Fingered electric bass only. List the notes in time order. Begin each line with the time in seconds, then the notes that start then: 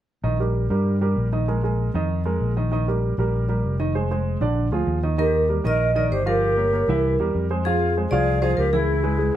0.23 A#1
0.70 G2
1.16 A#1
1.94 F2
2.40 A#1
3.18 A#1
3.64 F1
4.40 A#1
4.71 D2
4.87 D#2
5.64 A#1
6.10 G1
6.88 C2
7.19 E2
7.34 F2
8.11 C2
8.58 C#2